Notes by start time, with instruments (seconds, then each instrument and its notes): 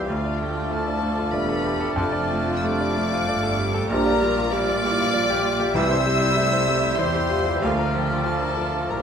Already playing: grand piano E2 G3 E4 F4 G4 C5
0.08 double bass section D2, cello section D2, grand piano D2, trombone section F3 A3, viola section A3 F4, bassoon A3, french horn section D4 F4, violin section F4 F5, oboe D5, flute F6
0.25 grand piano D5
0.39 grand piano A3, violin section G4 G5
0.57 grand piano F4
0.71 grand piano A3, viola section A3 E4, violin section A4 A5
0.88 grand piano D5
1.02 grand piano A3, viola section D4
1.19 grand piano F4
1.33 double bass section E1, cello section E2, viola section G3 D4, violin section B4 B5, grand piano D5
1.49 grand piano A4
1.65 grand piano G4
1.81 grand piano A4
1.95 double bass section F1, grand piano F2, timpani F2, cello section F2, viola section F3 F4, violin section A4 A5
2.12 grand piano D5
2.30 viola section A3, grand piano A3
2.48 grand piano F4
2.56 violin section E6
2.62 viola section G3 D4, grand piano A3, violin section D5 D6
2.80 grand piano D5
2.95 viola section F3, grand piano A3
3.13 grand piano F4
3.26 double bass section G1, cello section G2, viola section A3 D4, grand piano D5
3.43 grand piano A4
3.59 grand piano G4
3.74 grand piano A4
3.89 grand piano A#1, double bass section A#1, cello section A#2, trombone section F3 G3, bassoon G3, viola section G3 G4, french horn section D4 G4, violin section A#4 A#5, oboe D5, flute F6
4.06 grand piano D5
4.22 grand piano G3, viola section F4
4.36 grand piano F4
4.52 viola section F3 F4, bassoon G3, grand piano G3, violin section D5 D6, oboe D5, flute F6
4.69 grand piano D5
4.85 viola section E3, grand piano G3
5.00 grand piano F4
5.14 viola section F3, grand piano D5
5.30 grand piano G4
5.44 viola section G3, grand piano F4
5.60 grand piano G4
5.74 grand piano C2, double bass section C2, cello section C3, timpani C3, trombone section E3 G3, viola section G3 E4, bassoon G3, french horn section C4 E4, oboe C5, violin section E5 E6, flute E6
5.91 grand piano C5
6.06 grand piano G3
6.21 grand piano E4
6.37 grand piano G3, viola section A3 G4
6.53 grand piano C5
6.68 grand piano G3
6.84 grand piano E4
6.99 double bass section E2, cello section E3, viola section G3, bassoon G3, grand piano C5, violin section C5 C6, oboe C5, flute E6
7.15 grand piano G4
7.30 grand piano F4
7.46 grand piano G4
7.62 grand piano D2, double bass section D2, cello section D3, trombone section D3 F3, bassoon F3, viola section F3 F4, french horn section A#3 F4, violin section F4 F5, oboe D5, flute F6
7.78 grand piano A#4
7.94 grand piano F3, violin section G4 G5
8.10 grand piano F4
8.26 grand piano F3, viola section F3, violin section A4 A5
8.42 grand piano A#4
8.58 grand piano F3
8.74 grand piano F4
8.90 double bass section A#1, cello section A#2, bassoon F3, viola section G3 E4, grand piano A#4, violin section A#4 A#5, oboe D5, flute F6